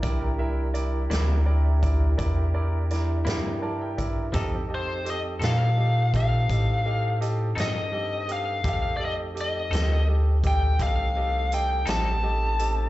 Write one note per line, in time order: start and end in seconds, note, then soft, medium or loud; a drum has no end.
0.03 1.08 C2 medium
0.03 4.30 D4 medium
0.03 0.30 E4 medium
0.03 4.30 E4 medium
0.03 4.30 G4 medium
0.03 0.30 A#4 medium
0.03 4.30 A#4 medium
0.03 0.30 D5 medium
0.03 kick loud
0.03 closed hi-hat medium
0.38 0.65 E4 medium
0.38 0.66 A#4 medium
0.38 0.66 E5 medium
0.74 1.01 E4 medium
0.74 1.01 A#4 soft
0.74 1.01 D5 medium
0.74 closed hi-hat medium
1.10 2.15 D2 medium
1.10 1.33 C3 medium
1.10 1.32 G3 medium
1.10 1.32 A#3 medium
1.10 1.37 E4 medium
1.10 1.32 E4 medium
1.10 1.37 A#4 medium
1.10 1.37 D5 medium
1.10 snare loud
1.10 closed hi-hat medium
1.46 1.73 E4 medium
1.46 1.73 A#4 soft
1.46 1.73 D5 medium
1.82 2.09 E4 medium
1.82 2.09 A#4 medium
1.82 2.09 D5 medium
1.82 kick medium
1.82 closed hi-hat medium
2.17 3.23 E2 medium
2.17 2.45 E4 medium
2.17 2.45 A#4 medium
2.17 2.45 D5 medium
2.17 kick medium
2.17 closed hi-hat medium
2.54 2.81 E4 medium
2.54 2.81 A#4 medium
2.54 2.81 D5 medium
2.90 3.17 E4 medium
2.90 3.17 A#4 medium
2.90 3.18 D5 medium
2.90 snare soft
2.90 closed hi-hat medium
3.25 4.31 G2 medium
3.25 3.48 C3 medium
3.25 3.48 G3 medium
3.25 3.47 A#3 medium
3.25 3.47 E4 medium
3.25 3.53 E4 medium
3.25 3.53 A#4 soft
3.25 3.53 D5 medium
3.25 snare medium
3.25 closed hi-hat medium
3.61 3.88 E4 medium
3.61 3.89 A#4 medium
3.61 3.89 D5 medium
3.61 3.79 A5 soft
3.81 3.97 G5 soft
3.98 4.25 E4 medium
3.98 4.25 A#4 medium
3.98 4.25 D5 medium
3.98 4.31 E5 soft
3.98 kick medium
3.98 closed hi-hat medium
4.31 5.39 F2 medium
4.31 4.55 F3 medium
4.31 8.59 C4 medium
4.31 4.55 C4 medium
4.31 8.60 D#4 medium
4.31 4.55 D#4 medium
4.31 8.59 G4 medium
4.31 4.61 G4 medium
4.31 8.59 A4 medium
4.31 4.61 A4 medium
4.31 4.56 A4 medium
4.31 4.61 D#5 medium
4.31 kick loud
4.31 closed hi-hat medium
4.69 4.96 G4 soft
4.69 4.96 A4 soft
4.69 4.97 D#5 medium
4.75 5.09 C5 medium
5.05 5.32 G4 soft
5.05 5.33 A4 soft
5.05 5.33 D#5 medium
5.05 closed hi-hat medium
5.10 5.19 D#5 medium
5.39 6.46 A#2 medium
5.39 5.63 F3 soft
5.39 5.63 C4 medium
5.39 5.62 D#4 medium
5.39 5.68 G4 medium
5.39 5.62 A4 medium
5.39 5.68 A4 soft
5.39 5.68 D#5 medium
5.39 closed hi-hat medium
5.44 6.11 F5 medium
5.44 snare loud
5.77 6.04 G4 soft
5.77 6.04 A4 soft
5.77 6.04 D#5 soft
6.13 6.40 G4 soft
6.13 6.40 A4 soft
6.13 6.41 D#5 soft
6.13 7.19 F5 medium
6.13 kick medium
6.13 closed hi-hat medium
6.50 7.54 A2 medium
6.50 6.77 G4 soft
6.50 6.77 A4 soft
6.50 6.77 D#5 medium
6.50 kick medium
6.50 closed hi-hat medium
6.86 7.12 G4 soft
6.86 7.12 A4 soft
6.86 7.12 D#5 soft
7.21 7.48 G4 medium
7.21 7.48 A4 medium
7.21 7.48 D#5 medium
7.21 closed hi-hat medium
7.55 8.62 G2 medium
7.55 7.79 F3 soft
7.55 7.78 C4 soft
7.55 7.78 D#4 medium
7.55 7.84 G4 soft
7.55 7.78 A4 medium
7.55 7.84 A4 soft
7.55 7.84 D#5 soft
7.55 closed hi-hat medium
7.60 8.32 D#5 medium
7.60 snare medium
7.92 8.19 G4 soft
7.92 8.19 A4 soft
7.92 8.20 D#5 medium
8.28 8.55 G4 soft
8.28 8.55 A4 soft
8.28 8.56 D#5 soft
8.28 closed hi-hat medium
8.32 8.67 F5 medium
8.63 9.69 F2 medium
8.63 12.89 A3 medium
8.63 12.89 C4 medium
8.63 12.89 D#4 medium
8.63 12.89 G4 medium
8.63 8.91 G4 medium
8.63 8.92 A4 medium
8.63 8.92 D#5 medium
8.63 kick loud
8.63 closed hi-hat medium
8.69 8.96 F5 medium
8.97 9.27 G4 soft
8.97 9.27 A4 soft
8.97 9.02 D5 medium
8.97 9.27 D#5 medium
9.05 9.14 D#5 medium
9.35 9.63 G4 soft
9.35 9.63 A4 soft
9.35 9.63 D#5 medium
9.35 closed hi-hat medium
9.41 10.06 D#5 medium
9.71 10.76 D2 medium
9.71 9.94 F3 medium
9.71 9.94 C4 soft
9.71 9.93 D#4 medium
9.71 9.99 G4 medium
9.71 9.93 A4 medium
9.71 9.99 A4 soft
9.71 9.99 D#5 medium
9.71 closed hi-hat medium
9.75 snare loud
10.08 10.35 G4 soft
10.08 10.35 A4 soft
10.08 10.35 D#5 soft
10.44 10.71 G4 soft
10.44 10.71 A4 soft
10.44 10.71 D#5 medium
10.44 10.82 G5 medium
10.44 kick medium
10.44 closed hi-hat medium
10.79 11.84 C2 medium
10.79 11.07 G4 soft
10.79 11.07 A4 soft
10.79 11.07 D#5 medium
10.79 11.55 F5 medium
10.79 kick medium
10.79 closed hi-hat medium
11.16 11.43 G4 soft
11.16 11.43 A4 soft
11.16 11.43 D#5 medium
11.52 11.79 G4 soft
11.52 11.79 A4 soft
11.52 11.80 D#5 medium
11.52 11.89 G5 medium
11.52 closed hi-hat medium
11.86 12.89 A1 medium
11.86 12.09 F3 soft
11.86 12.09 C4 medium
11.86 12.08 D#4 medium
11.86 12.15 G4 soft
11.86 12.08 A4 medium
11.86 12.15 A4 soft
11.86 12.15 D#5 soft
11.86 12.89 A5 medium
11.86 snare loud
11.86 closed hi-hat medium
12.23 12.50 G4 soft
12.23 12.50 A4 soft
12.23 12.51 D#5 medium
12.59 12.86 G4 soft
12.59 12.86 A4 soft
12.59 12.87 D#5 medium
12.59 closed hi-hat medium